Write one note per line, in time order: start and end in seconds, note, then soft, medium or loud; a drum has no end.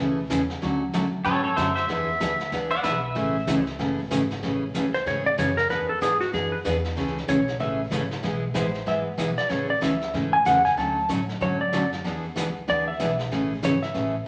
0.00 0.29 C#2 medium
0.00 0.18 C#3 medium
0.00 0.19 E3 medium
0.00 0.19 A3 medium
0.00 0.19 C#4 medium
0.00 0.19 G#4 medium
0.30 0.61 E2 medium
0.30 0.41 C#3 medium
0.30 0.41 E3 medium
0.30 0.41 A3 medium
0.30 0.41 C#4 medium
0.30 0.41 G#4 medium
0.30 kick soft
0.30 snare medium
0.30 hi-hat pedal medium
0.50 snare soft
0.62 0.93 D2 medium
0.62 0.82 D3 medium
0.62 0.82 F#3 medium
0.62 0.82 A3 medium
0.62 0.82 C#4 medium
0.62 0.82 F#4 medium
0.62 brush sweep soft
0.62 kick soft
0.62 snare soft
0.93 1.11 C#2 loud
0.93 1.05 D3 medium
0.93 1.05 F#3 medium
0.93 1.05 A3 medium
0.93 1.05 C#4 medium
0.93 1.05 F#4 medium
0.93 kick soft
0.93 snare medium
0.93 hi-hat pedal medium
1.13 muted upright bass stroke soft
1.25 1.56 G#2 loud
1.25 1.45 D3 medium
1.25 1.45 F#3 medium
1.25 1.45 A3 medium
1.25 1.46 C#4 medium
1.25 1.46 F#4 medium
1.25 1.43 A4 medium
1.25 1.43 C#5 loud
1.25 brush sweep medium
1.25 kick soft
1.25 snare soft
1.44 1.56 A4 medium
1.44 1.56 C#5 medium
1.56 1.88 F#2 loud
1.56 1.68 D3 medium
1.56 1.68 F#3 medium
1.56 1.68 A3 medium
1.56 1.68 C#4 medium
1.56 1.68 F#4 medium
1.56 1.74 C5 medium
1.56 1.74 E5 medium
1.56 kick soft
1.56 snare medium
1.56 hi-hat pedal medium
1.75 1.87 C5 medium
1.75 1.87 E5 medium
1.75 snare soft
1.88 2.19 E2 medium
1.88 2.09 E3 medium
1.88 2.09 B3 medium
1.88 2.09 D4 medium
1.88 2.10 G#4 medium
1.88 2.50 E5 loud
1.88 brush sweep soft
1.88 kick soft
1.88 snare soft
2.20 2.51 D2 loud
2.20 2.31 E3 medium
2.20 2.32 B3 medium
2.20 2.32 D4 medium
2.20 2.32 G#4 medium
2.20 kick soft
2.20 snare medium
2.20 hi-hat pedal medium
2.40 snare soft
2.52 2.83 C#2 medium
2.52 2.72 E3 medium
2.52 2.72 B3 medium
2.52 2.73 D4 medium
2.52 2.73 G#4 medium
2.52 brush sweep medium
2.52 kick soft
2.52 snare soft
2.71 2.83 D5 medium
2.71 2.83 F#5 medium
2.83 3.15 B1 medium
2.83 2.95 E3 medium
2.83 2.95 B3 medium
2.83 2.95 D4 medium
2.83 2.95 G#4 medium
2.83 3.03 B4 medium
2.83 3.02 E5 medium
2.83 kick soft
2.83 snare medium
2.83 hi-hat pedal medium
3.03 3.65 E5 medium
3.15 3.46 A1 medium
3.15 3.36 C#3 medium
3.15 3.36 E3 medium
3.15 3.36 A3 medium
3.15 3.36 C#4 medium
3.15 3.36 G#4 medium
3.15 brush sweep soft
3.15 kick soft
3.15 snare soft
3.47 3.78 C#2 loud
3.47 3.58 C#3 medium
3.47 3.58 E3 medium
3.47 3.59 A3 medium
3.47 3.59 C#4 medium
3.47 3.59 G#4 medium
3.47 kick soft
3.47 snare medium
3.47 hi-hat pedal medium
3.67 snare soft
3.79 4.10 F#1 loud
3.79 3.99 C#3 medium
3.79 3.99 E3 medium
3.79 3.99 A3 medium
3.79 4.00 C#4 medium
3.79 4.00 G#4 medium
3.79 brush sweep medium
3.79 kick soft
3.79 snare medium
4.11 4.42 G#1 medium
4.11 4.22 C#3 medium
4.11 4.22 E3 medium
4.11 4.22 A3 medium
4.11 4.22 C#4 medium
4.11 4.22 G#4 medium
4.11 kick soft
4.11 snare medium
4.11 hi-hat pedal medium
4.30 snare soft
4.43 4.73 A1 medium
4.43 4.63 C#3 medium
4.43 4.63 E3 medium
4.43 4.63 A3 medium
4.43 4.63 C#4 medium
4.43 4.63 G#4 medium
4.43 brush sweep soft
4.43 kick soft
4.43 snare soft
4.74 5.05 C#2 medium
4.74 4.85 C#3 medium
4.74 4.85 E3 medium
4.74 4.86 A3 medium
4.74 4.86 C#4 medium
4.74 4.86 G#4 medium
4.74 kick soft
4.74 snare medium
4.74 hi-hat pedal medium
4.94 5.06 C5 medium
4.94 snare soft
5.06 5.37 G#2 medium
5.06 5.26 C#3 medium
5.06 5.26 E3 medium
5.06 5.26 A3 medium
5.06 5.27 C#4 medium
5.06 5.27 G#4 medium
5.06 5.25 C#5 medium
5.06 brush sweep soft
5.06 kick soft
5.06 snare soft
5.26 5.38 D5 loud
5.38 5.69 F#2 medium
5.38 5.49 C#3 medium
5.38 5.49 E3 medium
5.38 5.49 A3 medium
5.38 5.49 C#4 medium
5.38 5.49 G#4 medium
5.38 5.57 C#5 medium
5.38 kick soft
5.38 snare medium
5.38 hi-hat pedal medium
5.57 5.69 A#4 medium
5.57 snare soft
5.70 6.00 E2 medium
5.70 5.90 E3 medium
5.70 5.90 B3 medium
5.70 5.90 D4 medium
5.70 5.90 G#4 medium
5.70 5.89 B4 loud
5.70 brush sweep soft
5.70 kick soft
5.70 snare soft
5.89 6.01 A4 medium
6.01 6.32 G#2 medium
6.01 6.12 E3 medium
6.01 6.12 B3 medium
6.01 6.12 D4 medium
6.01 6.20 G#4 medium
6.01 6.13 G#4 medium
6.01 kick soft
6.01 snare medium
6.01 hi-hat pedal medium
6.20 6.33 F#4 medium
6.20 snare soft
6.33 6.64 F#2 medium
6.33 6.53 E3 medium
6.33 6.53 B3 medium
6.33 6.53 D4 medium
6.33 6.53 G#4 medium
6.33 6.52 G#4 medium
6.33 brush sweep medium
6.33 kick soft
6.33 snare soft
6.52 6.60 B4 loud
6.65 6.96 E2 loud
6.65 6.76 E3 medium
6.65 6.76 B3 medium
6.65 6.76 D4 medium
6.65 6.76 G#4 medium
6.65 kick soft
6.65 snare medium
6.65 hi-hat pedal medium
6.84 snare soft
6.96 7.27 C#2 medium
6.96 7.17 C#3 medium
6.96 7.17 E3 medium
6.96 7.17 A3 medium
6.96 7.17 C#4 medium
6.96 7.17 G#4 medium
6.96 brush sweep medium
6.96 kick soft
6.96 snare soft
7.08 snare soft
7.18 snare soft
7.28 7.59 B1 medium
7.28 7.39 C#3 medium
7.28 7.39 E3 medium
7.28 7.39 A3 medium
7.28 7.39 C#4 medium
7.28 7.39 G#4 medium
7.28 7.58 C#5 medium
7.28 kick soft
7.28 snare medium
7.28 hi-hat pedal medium
7.48 snare soft
7.60 7.91 A1 medium
7.60 7.80 C#3 medium
7.60 7.80 E3 medium
7.60 7.80 A3 medium
7.60 7.80 C#4 medium
7.60 7.80 G#4 medium
7.60 7.79 E5 loud
7.60 brush sweep medium
7.60 kick soft
7.60 snare soft
7.91 8.22 G#1 medium
7.91 8.02 C#3 medium
7.91 8.02 E3 medium
7.91 8.02 A3 medium
7.91 8.03 C#4 medium
7.91 8.03 G#4 medium
7.91 kick soft
7.91 snare medium
7.91 hi-hat pedal medium
8.11 snare soft
8.23 8.54 B1 medium
8.23 8.43 E3 medium
8.23 8.43 G#3 medium
8.23 8.43 B3 medium
8.23 8.44 E4 medium
8.23 8.44 G#4 medium
8.23 brush sweep soft
8.23 kick soft
8.23 snare soft
8.54 8.86 A1 medium
8.54 8.66 E3 medium
8.54 8.66 G#3 medium
8.54 8.66 B3 medium
8.54 8.66 E4 medium
8.54 8.66 G#4 medium
8.54 8.85 C5 medium
8.54 kick soft
8.54 snare medium
8.54 hi-hat pedal medium
8.74 snare soft
8.86 9.18 G#1 medium
8.86 9.07 E3 medium
8.86 9.07 G#3 medium
8.86 9.07 B3 medium
8.86 9.07 E4 medium
8.86 9.07 G#4 medium
8.86 8.99 E5 medium
8.86 brush sweep soft
8.86 kick soft
8.86 snare soft
9.18 9.37 B1 medium
9.18 9.29 E3 medium
9.18 9.29 G#3 medium
9.18 9.29 B3 medium
9.18 9.29 E4 medium
9.18 9.29 G#4 medium
9.18 kick soft
9.18 snare medium
9.18 hi-hat pedal medium
9.38 9.51 D5 medium
9.38 muted upright bass stroke soft
9.38 snare soft
9.49 9.81 A1 medium
9.49 9.70 C#3 medium
9.49 9.70 E3 medium
9.49 9.70 A3 medium
9.49 9.70 C#4 medium
9.49 9.70 G#4 medium
9.49 9.69 C#5 medium
9.49 brush sweep soft
9.49 kick soft
9.49 snare soft
9.70 9.82 D5 medium
9.81 10.13 C#2 medium
9.81 9.92 C#3 medium
9.81 9.93 E3 medium
9.81 9.93 A3 medium
9.81 9.93 C#4 medium
9.81 9.93 G#4 medium
9.81 10.12 E5 medium
9.81 kick soft
9.81 snare medium
9.81 hi-hat pedal medium
10.01 snare soft
10.14 10.45 G#2 loud
10.14 10.34 C#3 medium
10.14 10.34 E3 medium
10.14 10.34 A3 medium
10.14 10.34 C#4 medium
10.14 10.34 G#4 medium
10.14 brush sweep soft
10.14 kick soft
10.14 snare soft
10.33 10.45 G#5 loud
10.45 10.76 E2 medium
10.45 10.56 C#3 medium
10.45 10.57 E3 medium
10.45 10.57 A3 medium
10.45 10.57 C#4 medium
10.45 10.57 G#4 medium
10.45 10.65 F#5 medium
10.45 kick soft
10.45 snare medium
10.45 hi-hat pedal medium
10.65 10.77 G#5 medium
10.65 snare soft
10.77 11.08 D2 medium
10.77 10.97 D3 medium
10.77 10.97 F#3 medium
10.77 10.98 A3 medium
10.77 10.98 C#4 medium
10.77 10.98 F#4 medium
10.77 11.09 A5 medium
10.77 brush sweep soft
10.77 kick soft
10.77 snare soft
11.09 11.40 A2 loud
11.09 11.20 D3 medium
11.09 11.20 F#3 medium
11.09 11.20 A3 medium
11.09 11.20 C#4 medium
11.09 11.20 F#4 medium
11.09 kick soft
11.09 snare medium
11.09 hi-hat pedal medium
11.29 snare soft
11.41 11.72 G#2 medium
11.41 11.61 D3 medium
11.41 11.61 F#3 medium
11.41 11.61 A3 medium
11.41 11.61 C#4 medium
11.41 11.61 F#4 medium
11.41 11.60 C#5 medium
11.41 brush sweep soft
11.41 kick soft
11.41 snare soft
11.61 11.90 D5 loud
11.73 12.03 F#2 medium
11.73 11.83 D3 medium
11.73 11.84 F#3 medium
11.73 11.84 A3 medium
11.73 11.84 C#4 medium
11.73 11.84 F#4 medium
11.73 kick soft
11.73 snare medium
11.73 hi-hat pedal medium
11.93 snare soft
12.04 12.35 E2 medium
12.04 12.24 E3 medium
12.04 12.25 B3 medium
12.04 12.25 D4 medium
12.04 12.25 G#4 medium
12.04 brush sweep medium
12.04 kick soft
12.04 snare soft
12.36 12.67 C#2 loud
12.36 12.47 E3 medium
12.36 12.47 B3 medium
12.36 12.47 D4 medium
12.36 12.47 G#4 medium
12.36 kick soft
12.36 snare medium
12.36 hi-hat pedal medium
12.68 12.99 D2 medium
12.68 12.88 E3 medium
12.68 12.88 B3 medium
12.68 12.88 D4 medium
12.68 12.88 G#4 medium
12.68 12.87 D5 medium
12.68 brush sweep medium
12.68 kick soft
12.68 snare soft
12.88 13.17 E5 loud
13.00 13.30 B1 loud
13.00 13.10 E3 medium
13.00 13.10 B3 medium
13.00 13.11 D4 medium
13.00 13.11 G#4 medium
13.00 kick soft
13.00 snare medium
13.00 hi-hat pedal medium
13.19 snare soft
13.31 13.62 A1 medium
13.31 13.51 C#3 medium
13.31 13.51 E3 medium
13.31 13.52 A3 medium
13.31 13.52 C#4 medium
13.31 13.52 G#4 medium
13.31 brush sweep soft
13.31 kick soft
13.31 snare soft
13.63 13.94 G#1 medium
13.63 13.74 C#3 medium
13.63 13.74 E3 medium
13.63 13.74 A3 medium
13.63 13.74 C#4 medium
13.63 13.74 G#4 medium
13.63 13.82 C#5 medium
13.63 kick soft
13.63 snare medium
13.63 hi-hat pedal medium
13.83 14.12 E5 loud
13.83 snare soft
13.94 14.25 A1 loud
13.94 14.14 C#3 medium
13.94 14.14 E3 medium
13.94 14.15 A3 medium
13.94 14.15 C#4 medium
13.94 14.15 G#4 medium
13.94 brush sweep medium
13.94 kick soft
13.94 snare soft